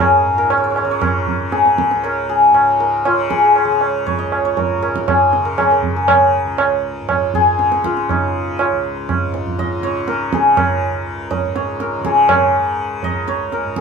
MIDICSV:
0, 0, Header, 1, 4, 480
1, 0, Start_track
1, 0, Tempo, 507185
1, 1925, Time_signature, 4, 2, 24, 8
1, 6709, Tempo, 494641
1, 13227, End_track
2, 0, Start_track
2, 0, Title_t, "Santur"
2, 0, Program_c, 0, 15
2, 0, Note_on_c, 0, 65, 50
2, 0, Note_on_c, 0, 70, 90
2, 0, Note_on_c, 0, 73, 90
2, 0, Note_on_c, 0, 75, 86
2, 1, Note_on_c, 0, 68, 84
2, 356, Note_off_c, 0, 70, 0
2, 360, Note_on_c, 0, 70, 85
2, 473, Note_off_c, 0, 73, 0
2, 477, Note_on_c, 0, 73, 81
2, 538, Note_off_c, 0, 73, 0
2, 541, Note_on_c, 0, 73, 68
2, 600, Note_off_c, 0, 73, 0
2, 604, Note_on_c, 0, 73, 71
2, 663, Note_off_c, 0, 73, 0
2, 667, Note_on_c, 0, 73, 60
2, 727, Note_off_c, 0, 73, 0
2, 731, Note_on_c, 0, 73, 64
2, 798, Note_off_c, 0, 73, 0
2, 802, Note_on_c, 0, 73, 67
2, 858, Note_off_c, 0, 73, 0
2, 862, Note_on_c, 0, 73, 77
2, 953, Note_off_c, 0, 70, 0
2, 957, Note_on_c, 0, 70, 84
2, 1435, Note_off_c, 0, 68, 0
2, 1439, Note_on_c, 0, 68, 85
2, 1635, Note_off_c, 0, 75, 0
2, 1818, Note_off_c, 0, 65, 0
2, 1929, Note_off_c, 0, 70, 0
2, 1933, Note_on_c, 0, 70, 82
2, 2165, Note_off_c, 0, 68, 0
2, 2169, Note_on_c, 0, 68, 86
2, 2647, Note_off_c, 0, 70, 0
2, 2651, Note_on_c, 0, 70, 78
2, 2893, Note_on_c, 0, 65, 81
2, 3119, Note_off_c, 0, 68, 0
2, 3123, Note_on_c, 0, 68, 71
2, 3199, Note_off_c, 0, 68, 0
2, 3202, Note_on_c, 0, 68, 58
2, 3255, Note_off_c, 0, 68, 0
2, 3259, Note_on_c, 0, 68, 61
2, 3274, Note_off_c, 0, 73, 0
2, 3325, Note_off_c, 0, 68, 0
2, 3329, Note_on_c, 0, 68, 56
2, 3382, Note_off_c, 0, 68, 0
2, 3386, Note_on_c, 0, 68, 58
2, 3449, Note_off_c, 0, 68, 0
2, 3453, Note_on_c, 0, 68, 58
2, 3514, Note_off_c, 0, 68, 0
2, 3517, Note_on_c, 0, 68, 58
2, 3846, Note_on_c, 0, 73, 94
2, 3962, Note_on_c, 0, 75, 87
2, 4208, Note_off_c, 0, 73, 0
2, 4211, Note_on_c, 0, 73, 83
2, 4320, Note_off_c, 0, 70, 0
2, 4324, Note_on_c, 0, 70, 77
2, 4564, Note_off_c, 0, 70, 0
2, 4567, Note_on_c, 0, 70, 79
2, 4802, Note_off_c, 0, 68, 0
2, 4806, Note_on_c, 0, 68, 85
2, 5156, Note_off_c, 0, 70, 0
2, 5160, Note_on_c, 0, 70, 75
2, 5276, Note_off_c, 0, 68, 0
2, 5280, Note_on_c, 0, 68, 78
2, 5400, Note_off_c, 0, 70, 0
2, 5404, Note_on_c, 0, 70, 71
2, 5640, Note_off_c, 0, 68, 0
2, 5644, Note_on_c, 0, 68, 69
2, 5771, Note_off_c, 0, 70, 0
2, 5774, Note_on_c, 0, 70, 65
2, 6092, Note_off_c, 0, 65, 0
2, 6210, Note_off_c, 0, 75, 0
2, 6624, Note_off_c, 0, 73, 0
2, 6957, Note_off_c, 0, 68, 0
2, 6961, Note_on_c, 0, 68, 100
2, 7447, Note_on_c, 0, 65, 74
2, 7694, Note_on_c, 0, 63, 81
2, 8176, Note_off_c, 0, 65, 0
2, 8180, Note_on_c, 0, 65, 64
2, 8511, Note_off_c, 0, 70, 0
2, 9136, Note_on_c, 0, 75, 96
2, 9376, Note_on_c, 0, 73, 89
2, 9607, Note_on_c, 0, 70, 81
2, 9855, Note_off_c, 0, 68, 0
2, 9858, Note_on_c, 0, 68, 82
2, 10086, Note_off_c, 0, 70, 0
2, 10090, Note_on_c, 0, 70, 70
2, 10797, Note_off_c, 0, 75, 0
2, 10801, Note_on_c, 0, 75, 91
2, 11040, Note_off_c, 0, 73, 0
2, 11044, Note_on_c, 0, 73, 88
2, 11188, Note_off_c, 0, 63, 0
2, 11284, Note_off_c, 0, 70, 0
2, 11288, Note_on_c, 0, 70, 80
2, 11459, Note_off_c, 0, 65, 0
2, 11521, Note_off_c, 0, 68, 0
2, 11525, Note_on_c, 0, 68, 79
2, 11775, Note_off_c, 0, 70, 0
2, 11779, Note_on_c, 0, 70, 67
2, 12481, Note_off_c, 0, 75, 0
2, 12485, Note_on_c, 0, 75, 101
2, 12713, Note_off_c, 0, 73, 0
2, 12717, Note_on_c, 0, 73, 92
2, 12957, Note_off_c, 0, 70, 0
2, 12961, Note_on_c, 0, 70, 82
2, 13191, Note_off_c, 0, 68, 0
2, 13195, Note_on_c, 0, 68, 73
2, 13227, Note_off_c, 0, 68, 0
2, 13227, Note_off_c, 0, 70, 0
2, 13227, Note_off_c, 0, 73, 0
2, 13227, Note_off_c, 0, 75, 0
2, 13227, End_track
3, 0, Start_track
3, 0, Title_t, "Tanpura"
3, 0, Program_c, 1, 104
3, 0, Note_on_c, 1, 37, 55
3, 0, Note_on_c, 1, 44, 61
3, 0, Note_on_c, 1, 49, 62
3, 223, Note_off_c, 1, 44, 0
3, 223, Note_on_c, 1, 44, 51
3, 772, Note_off_c, 1, 49, 0
3, 772, Note_on_c, 1, 49, 62
3, 1314, Note_off_c, 1, 49, 0
3, 1314, Note_on_c, 1, 49, 57
3, 1845, Note_off_c, 1, 37, 0
3, 1849, Note_on_c, 1, 37, 65
3, 2378, Note_off_c, 1, 44, 0
3, 2382, Note_on_c, 1, 44, 59
3, 2908, Note_off_c, 1, 49, 0
3, 2908, Note_on_c, 1, 49, 67
3, 3448, Note_off_c, 1, 49, 0
3, 3448, Note_on_c, 1, 49, 53
3, 3993, Note_off_c, 1, 37, 0
3, 3997, Note_on_c, 1, 37, 56
3, 4518, Note_off_c, 1, 44, 0
3, 4521, Note_on_c, 1, 44, 53
3, 5059, Note_off_c, 1, 49, 0
3, 5059, Note_on_c, 1, 49, 52
3, 5586, Note_off_c, 1, 49, 0
3, 5586, Note_on_c, 1, 49, 55
3, 6101, Note_off_c, 1, 37, 0
3, 6105, Note_on_c, 1, 37, 61
3, 6634, Note_off_c, 1, 44, 0
3, 6637, Note_on_c, 1, 44, 55
3, 7187, Note_off_c, 1, 49, 0
3, 7187, Note_on_c, 1, 49, 52
3, 7732, Note_off_c, 1, 49, 0
3, 7732, Note_on_c, 1, 49, 59
3, 8284, Note_off_c, 1, 37, 0
3, 8287, Note_on_c, 1, 37, 57
3, 8802, Note_off_c, 1, 44, 0
3, 8806, Note_on_c, 1, 44, 54
3, 9343, Note_off_c, 1, 49, 0
3, 9343, Note_on_c, 1, 49, 56
3, 9874, Note_off_c, 1, 49, 0
3, 9874, Note_on_c, 1, 49, 65
3, 10402, Note_off_c, 1, 37, 0
3, 10405, Note_on_c, 1, 37, 55
3, 10941, Note_off_c, 1, 44, 0
3, 10945, Note_on_c, 1, 44, 57
3, 11465, Note_off_c, 1, 49, 0
3, 11465, Note_on_c, 1, 49, 63
3, 12015, Note_off_c, 1, 49, 0
3, 12015, Note_on_c, 1, 49, 53
3, 12536, Note_off_c, 1, 37, 0
3, 12540, Note_on_c, 1, 37, 57
3, 13066, Note_off_c, 1, 44, 0
3, 13070, Note_on_c, 1, 44, 52
3, 13227, Note_off_c, 1, 37, 0
3, 13227, Note_off_c, 1, 44, 0
3, 13227, Note_off_c, 1, 49, 0
3, 13227, End_track
4, 0, Start_track
4, 0, Title_t, "Tabla"
4, 475, Note_on_c, 9, 60, 74
4, 570, Note_off_c, 9, 60, 0
4, 719, Note_on_c, 9, 60, 57
4, 814, Note_off_c, 9, 60, 0
4, 962, Note_on_c, 9, 60, 74
4, 962, Note_on_c, 9, 64, 62
4, 1056, Note_off_c, 9, 60, 0
4, 1056, Note_off_c, 9, 64, 0
4, 1206, Note_on_c, 9, 64, 57
4, 1301, Note_off_c, 9, 64, 0
4, 1443, Note_on_c, 9, 62, 70
4, 1537, Note_off_c, 9, 62, 0
4, 1566, Note_on_c, 9, 62, 54
4, 1661, Note_off_c, 9, 62, 0
4, 1688, Note_on_c, 9, 37, 55
4, 1782, Note_off_c, 9, 37, 0
4, 1810, Note_on_c, 9, 62, 54
4, 1904, Note_off_c, 9, 62, 0
4, 1928, Note_on_c, 9, 60, 64
4, 2023, Note_off_c, 9, 60, 0
4, 2408, Note_on_c, 9, 60, 77
4, 2503, Note_off_c, 9, 60, 0
4, 2890, Note_on_c, 9, 60, 65
4, 2985, Note_off_c, 9, 60, 0
4, 3129, Note_on_c, 9, 37, 64
4, 3223, Note_off_c, 9, 37, 0
4, 3369, Note_on_c, 9, 60, 72
4, 3464, Note_off_c, 9, 60, 0
4, 3606, Note_on_c, 9, 60, 54
4, 3701, Note_off_c, 9, 60, 0
4, 3849, Note_on_c, 9, 63, 73
4, 3849, Note_on_c, 9, 64, 62
4, 3944, Note_off_c, 9, 63, 0
4, 3944, Note_off_c, 9, 64, 0
4, 4090, Note_on_c, 9, 60, 57
4, 4185, Note_off_c, 9, 60, 0
4, 4326, Note_on_c, 9, 63, 67
4, 4326, Note_on_c, 9, 64, 67
4, 4421, Note_off_c, 9, 63, 0
4, 4421, Note_off_c, 9, 64, 0
4, 4567, Note_on_c, 9, 60, 62
4, 4662, Note_off_c, 9, 60, 0
4, 4690, Note_on_c, 9, 37, 60
4, 4785, Note_off_c, 9, 37, 0
4, 4807, Note_on_c, 9, 60, 69
4, 4807, Note_on_c, 9, 64, 64
4, 4902, Note_off_c, 9, 60, 0
4, 4902, Note_off_c, 9, 64, 0
4, 5045, Note_on_c, 9, 62, 64
4, 5140, Note_off_c, 9, 62, 0
4, 5281, Note_on_c, 9, 60, 68
4, 5281, Note_on_c, 9, 64, 58
4, 5375, Note_off_c, 9, 60, 0
4, 5375, Note_off_c, 9, 64, 0
4, 5516, Note_on_c, 9, 64, 52
4, 5610, Note_off_c, 9, 64, 0
4, 5755, Note_on_c, 9, 60, 94
4, 5755, Note_on_c, 9, 64, 77
4, 5849, Note_off_c, 9, 60, 0
4, 5849, Note_off_c, 9, 64, 0
4, 6231, Note_on_c, 9, 60, 82
4, 6325, Note_off_c, 9, 60, 0
4, 6707, Note_on_c, 9, 60, 66
4, 6707, Note_on_c, 9, 64, 63
4, 6804, Note_off_c, 9, 60, 0
4, 6804, Note_off_c, 9, 64, 0
4, 6950, Note_on_c, 9, 64, 53
4, 7047, Note_off_c, 9, 64, 0
4, 7196, Note_on_c, 9, 62, 67
4, 7293, Note_off_c, 9, 62, 0
4, 7320, Note_on_c, 9, 62, 60
4, 7417, Note_off_c, 9, 62, 0
4, 7441, Note_on_c, 9, 37, 60
4, 7538, Note_off_c, 9, 37, 0
4, 7562, Note_on_c, 9, 62, 54
4, 7660, Note_off_c, 9, 62, 0
4, 7684, Note_on_c, 9, 60, 73
4, 7684, Note_on_c, 9, 64, 62
4, 7781, Note_off_c, 9, 60, 0
4, 7781, Note_off_c, 9, 64, 0
4, 8168, Note_on_c, 9, 60, 68
4, 8265, Note_off_c, 9, 60, 0
4, 8652, Note_on_c, 9, 60, 68
4, 8652, Note_on_c, 9, 64, 59
4, 8749, Note_off_c, 9, 60, 0
4, 8749, Note_off_c, 9, 64, 0
4, 8893, Note_on_c, 9, 62, 59
4, 8990, Note_off_c, 9, 62, 0
4, 9012, Note_on_c, 9, 64, 51
4, 9109, Note_off_c, 9, 64, 0
4, 9133, Note_on_c, 9, 63, 67
4, 9133, Note_on_c, 9, 64, 59
4, 9230, Note_off_c, 9, 63, 0
4, 9230, Note_off_c, 9, 64, 0
4, 9372, Note_on_c, 9, 62, 76
4, 9469, Note_off_c, 9, 62, 0
4, 9608, Note_on_c, 9, 62, 67
4, 9705, Note_off_c, 9, 62, 0
4, 9850, Note_on_c, 9, 37, 67
4, 9947, Note_off_c, 9, 37, 0
4, 10089, Note_on_c, 9, 60, 91
4, 10089, Note_on_c, 9, 64, 75
4, 10186, Note_off_c, 9, 60, 0
4, 10186, Note_off_c, 9, 64, 0
4, 10804, Note_on_c, 9, 63, 71
4, 10804, Note_on_c, 9, 64, 64
4, 10901, Note_off_c, 9, 63, 0
4, 10901, Note_off_c, 9, 64, 0
4, 11044, Note_on_c, 9, 62, 67
4, 11141, Note_off_c, 9, 62, 0
4, 11281, Note_on_c, 9, 62, 75
4, 11379, Note_off_c, 9, 62, 0
4, 11520, Note_on_c, 9, 37, 73
4, 11617, Note_off_c, 9, 37, 0
4, 11755, Note_on_c, 9, 60, 93
4, 11755, Note_on_c, 9, 64, 87
4, 11852, Note_off_c, 9, 60, 0
4, 11852, Note_off_c, 9, 64, 0
4, 12471, Note_on_c, 9, 63, 70
4, 12471, Note_on_c, 9, 64, 63
4, 12568, Note_off_c, 9, 63, 0
4, 12568, Note_off_c, 9, 64, 0
4, 12713, Note_on_c, 9, 62, 74
4, 12810, Note_off_c, 9, 62, 0
4, 12953, Note_on_c, 9, 62, 70
4, 13051, Note_off_c, 9, 62, 0
4, 13187, Note_on_c, 9, 37, 67
4, 13227, Note_off_c, 9, 37, 0
4, 13227, End_track
0, 0, End_of_file